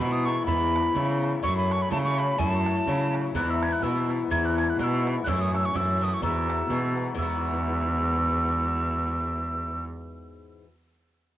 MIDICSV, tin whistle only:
0, 0, Header, 1, 2, 480
1, 0, Start_track
1, 0, Key_signature, 4, "major"
1, 0, Tempo, 477707
1, 480, Time_signature, 2, 2, 24, 8
1, 11432, End_track
2, 0, Start_track
2, 0, Title_t, "Tin whistle"
2, 0, Program_c, 0, 75
2, 0, Note_on_c, 0, 83, 100
2, 121, Note_on_c, 0, 87, 97
2, 136, Note_off_c, 0, 83, 0
2, 256, Note_on_c, 0, 85, 106
2, 271, Note_off_c, 0, 87, 0
2, 457, Note_off_c, 0, 85, 0
2, 463, Note_on_c, 0, 83, 105
2, 1188, Note_off_c, 0, 83, 0
2, 1440, Note_on_c, 0, 85, 118
2, 1569, Note_off_c, 0, 85, 0
2, 1581, Note_on_c, 0, 83, 88
2, 1731, Note_on_c, 0, 85, 115
2, 1746, Note_off_c, 0, 83, 0
2, 1828, Note_on_c, 0, 83, 101
2, 1844, Note_off_c, 0, 85, 0
2, 1920, Note_off_c, 0, 83, 0
2, 1926, Note_on_c, 0, 81, 101
2, 1986, Note_off_c, 0, 81, 0
2, 2053, Note_on_c, 0, 85, 111
2, 2197, Note_on_c, 0, 83, 99
2, 2212, Note_off_c, 0, 85, 0
2, 2397, Note_on_c, 0, 80, 94
2, 2412, Note_off_c, 0, 83, 0
2, 2508, Note_off_c, 0, 80, 0
2, 2508, Note_on_c, 0, 81, 94
2, 3157, Note_off_c, 0, 81, 0
2, 3378, Note_on_c, 0, 90, 104
2, 3520, Note_on_c, 0, 88, 90
2, 3535, Note_off_c, 0, 90, 0
2, 3643, Note_on_c, 0, 92, 107
2, 3658, Note_off_c, 0, 88, 0
2, 3743, Note_on_c, 0, 90, 105
2, 3758, Note_off_c, 0, 92, 0
2, 3848, Note_on_c, 0, 88, 93
2, 3863, Note_off_c, 0, 90, 0
2, 4122, Note_off_c, 0, 88, 0
2, 4334, Note_on_c, 0, 92, 127
2, 4475, Note_on_c, 0, 90, 107
2, 4490, Note_off_c, 0, 92, 0
2, 4602, Note_off_c, 0, 90, 0
2, 4608, Note_on_c, 0, 92, 115
2, 4722, Note_on_c, 0, 90, 92
2, 4737, Note_off_c, 0, 92, 0
2, 4817, Note_off_c, 0, 90, 0
2, 4822, Note_on_c, 0, 90, 85
2, 4859, Note_on_c, 0, 88, 92
2, 4870, Note_off_c, 0, 90, 0
2, 5071, Note_off_c, 0, 88, 0
2, 5268, Note_on_c, 0, 90, 102
2, 5309, Note_on_c, 0, 88, 110
2, 5324, Note_off_c, 0, 90, 0
2, 5433, Note_on_c, 0, 87, 97
2, 5448, Note_off_c, 0, 88, 0
2, 5567, Note_off_c, 0, 87, 0
2, 5582, Note_on_c, 0, 88, 120
2, 5682, Note_on_c, 0, 85, 96
2, 5697, Note_off_c, 0, 88, 0
2, 5790, Note_on_c, 0, 88, 109
2, 5805, Note_off_c, 0, 85, 0
2, 6065, Note_on_c, 0, 87, 105
2, 6080, Note_off_c, 0, 88, 0
2, 6167, Note_on_c, 0, 85, 86
2, 6182, Note_off_c, 0, 87, 0
2, 6260, Note_off_c, 0, 85, 0
2, 6271, Note_on_c, 0, 88, 96
2, 6974, Note_off_c, 0, 88, 0
2, 7216, Note_on_c, 0, 88, 86
2, 9893, Note_off_c, 0, 88, 0
2, 11432, End_track
0, 0, End_of_file